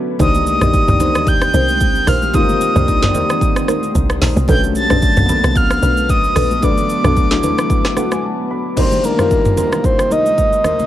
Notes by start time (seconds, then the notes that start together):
Already playing: D3 F#3 A3 B3 C#4 D4 E4 F#4 A4 B4 E5 F#5 A5
0.19 C2 D#3 G3 A#3 C4 D4 D#4 G4 A#4 C5 D#6, kick, low conga, shaker
0.35 high conga, shaker
0.47 D#6, shaker
0.61 A#1 D#3 G3 A#3 D4 D#4 A#4 C5, cross-stick, mid tom, shaker
0.73 kick, shaker
0.88 C2 D#3 G3 A#3 D4, mid tom, high conga, shaker
1.00 D#4 A#4 C5, low conga, shaker
1.15 D#2, cross-stick, shaker
1.27 G6, kick, shaker
1.42 cross-stick, shaker
1.53 C2 D#4 A#4 C5, high conga, shaker
1.68 shaker
1.81 kick, shaker
1.95 shaker
2.07 A#1 D#4 A#4 C5 F6, cross-stick, open hi-hat, high conga, low conga, shaker
2.22 high conga, shaker
2.34 D#3 G3 A#3 D#4 F4 A#4 C5 D#6, kick, low conga, shaker
2.49 high conga, shaker
2.61 shaker
2.75 C2 D#3 G3 A#3 D4 D#4 A#4 C5, mid tom, shaker
2.88 kick, shaker
3.02 D3 G3 A#3 D4, snare, mid tom, high conga, shaker
3.09 D#3
3.14 D#4 A#4 C5, low conga, shaker
3.30 cross-stick, shaker
3.41 kick, shaker
3.56 cross-stick, shaker
3.68 D#4 A#4 C5, cross-stick, high conga, shaker
3.83 shaker
3.95 C2, kick, shaker
4.10 cross-stick, shaker
4.21 A#1 D#4 A#4 C5, snare, open hi-hat, high conga, low conga, shaker
4.36 C2, high conga, shaker
4.48 B1 D3 F#3 A3 B3 C#4 D4 F#4 A4 B4 G6, kick, low conga, shaker
4.63 high conga, shaker
4.75 A6, shaker
4.90 A#1 D3 F#3 A3 D4 A4 B4, cross-stick, mid tom, shaker
5.02 kick, shaker
5.17 B1 D3 F#3 A3 A#3, mid tom, high conga, shaker
5.26 B3 D4 A4 B4, low conga, shaker
5.44 C2, cross-stick, shaker
5.56 F6, kick, shaker
5.71 cross-stick, shaker
5.82 B1 D4 A4 B4, high conga, shaker
5.97 shaker
6.09 D#6, kick, shaker
6.24 shaker
6.36 A#1 D4 A4 B4, cross-stick, open hi-hat, high conga, low conga, shaker
6.51 high conga, shaker
6.62 D3 F#3 A3 D4 A4 B4 D6, kick, low conga, shaker
6.78 high conga, shaker
6.89 shaker
7.04 B1 D3 F#3 A3 B3 D4 A4 B4, cross-stick, mid tom, shaker
7.16 kick, shaker
7.31 D3 F#3 A3 E4, snare, high conga, shaker
7.43 D4 A4 B4, low conga, shaker
7.58 cross-stick, shaker
7.70 kick, shaker
7.85 cross-stick, snare, shaker
7.96 D4 A4 B4 F#5, cross-stick, high conga, shaker
8.12 G#5, cross-stick, shaker
8.24 A5
8.51 B5
8.76 C2 C3 D#3 G3 A#3 D4 D#4 A#4 C5 D#5, kick, crash, low conga, shaker
8.92 high conga, shaker
9.03 C2 D#3 G3 A#3 D4 A#4, shaker
9.18 C2 D#3 G3 A#3 D#4 F4 A#4 C5, cross-stick, mid tom, shaker
9.31 kick, shaker
9.45 mid tom, high conga, shaker
9.57 D#4 A#4 C5, low conga, shaker
9.72 cross-stick, shaker
9.84 C5, kick, shaker
9.99 cross-stick, shaker
10.10 D#4 A#4 C5 D#5, high conga, shaker
10.26 shaker
10.38 kick, shaker
10.53 shaker
10.64 D#4 A#4 C5 D#5, cross-stick, high conga, low conga, shaker
10.79 high conga, shaker